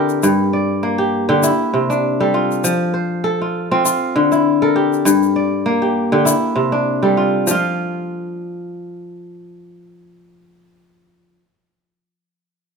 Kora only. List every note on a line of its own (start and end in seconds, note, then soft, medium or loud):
0.00 0.28 D3 medium
0.00 0.70 C4 medium
0.00 1.06 E4 medium
0.00 0.98 G4 medium
0.00 0.89 A4 medium
0.00 1.07 A#4 medium
0.23 1.48 G2 medium
0.53 1.64 D5 medium
0.83 2.26 A#3 medium
0.98 1.28 G4 medium
1.29 1.48 D3 medium
1.29 2.70 G4 medium
1.43 2.40 E4 medium
1.74 2.69 C3 medium
1.90 3.58 D4 medium
2.20 2.69 G3 medium
2.20 3.23 A4 medium
2.34 3.41 F4 medium
2.64 3.90 F3 medium
2.94 4.12 C5 medium
3.24 4.56 A4 medium
3.42 3.71 F4 medium
3.71 5.51 C4 medium
3.71 3.85 F4 medium
3.85 4.38 F4 medium
4.16 5.11 D3 medium
4.32 5.88 E4 medium
4.62 5.72 A4 medium
4.62 5.89 A#4 medium
4.76 5.81 G4 medium
5.05 6.32 G2 medium
5.36 6.47 D5 medium
5.66 7.09 A#3 medium
5.82 6.12 G4 medium
6.12 6.32 D3 medium
6.12 7.54 G4 medium
6.25 7.23 E4 medium
6.56 7.52 C3 medium
6.72 8.40 D4 medium
7.03 7.52 G3 medium
7.03 8.35 A4 medium
7.17 7.50 F4 medium
7.47 11.39 F3 medium
7.47 11.41 F4 medium
7.55 11.43 F5 medium